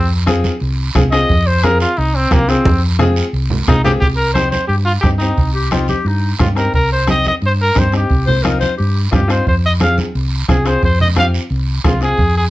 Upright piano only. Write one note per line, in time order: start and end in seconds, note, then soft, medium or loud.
0.26 0.51 C4 medium
0.26 0.51 F4 medium
0.26 0.51 G#4 medium
0.95 1.01 C4 medium
0.95 1.01 F4 medium
0.95 1.02 G#4 medium
1.12 1.30 C4 medium
1.12 1.30 F4 medium
1.12 1.31 G#4 medium
1.64 1.88 C4 medium
1.64 1.88 F4 medium
1.64 1.88 G#4 medium
2.31 2.37 C4 medium
2.31 2.37 F4 medium
2.31 2.38 G4 medium
2.48 2.66 C4 medium
2.48 2.66 F4 medium
2.48 2.67 G#4 medium
2.99 3.23 C4 medium
2.99 3.23 F4 medium
2.99 3.24 G#4 loud
3.68 3.74 C4 medium
3.68 3.74 F4 medium
3.68 3.74 G#4 medium
3.84 4.02 C4 medium
3.84 4.02 F4 medium
3.84 4.02 G#4 loud
4.35 4.59 C4 medium
4.35 4.60 D#4 medium
4.35 4.60 G4 medium
5.04 5.10 C4 medium
5.04 5.10 D#4 medium
5.04 5.10 G4 medium
5.20 5.39 C4 medium
5.20 5.39 D#4 medium
5.20 5.39 G4 medium
5.71 5.95 C4 medium
5.71 5.96 D#4 medium
5.71 5.96 G4 medium
6.39 6.45 C4 medium
6.39 6.46 D#4 medium
6.39 6.46 G4 medium
6.55 6.74 C4 medium
6.55 6.74 D#4 medium
6.55 6.74 G4 medium
7.07 7.31 C4 medium
7.07 7.31 D#4 medium
7.07 7.31 G4 medium
7.75 7.81 C4 medium
7.75 7.82 D#4 medium
7.75 7.82 G4 medium
7.92 8.10 C4 medium
7.92 8.11 D#4 medium
7.92 8.11 G4 medium
8.44 8.68 C4 medium
8.44 8.68 D#4 medium
8.44 8.68 F4 medium
9.11 9.18 C4 medium
9.11 9.18 D#4 medium
9.11 9.18 F4 medium
9.28 9.46 C4 medium
9.28 9.46 D#4 medium
9.28 9.46 F4 medium
9.80 10.04 C4 medium
9.80 10.04 F4 medium
9.80 10.05 G#4 medium
10.48 10.54 C4 medium
10.48 10.55 F4 medium
10.48 10.55 G#4 medium
10.65 10.83 C4 medium
10.65 10.83 F4 medium
10.65 10.83 G#4 medium
11.16 11.40 C4 medium
11.16 11.40 F4 medium
11.16 11.40 G4 medium
11.84 11.91 C4 medium
11.84 11.91 F4 medium
11.84 11.91 G#4 medium
12.01 12.19 C4 medium
12.01 12.20 F4 medium
12.01 12.20 G#4 medium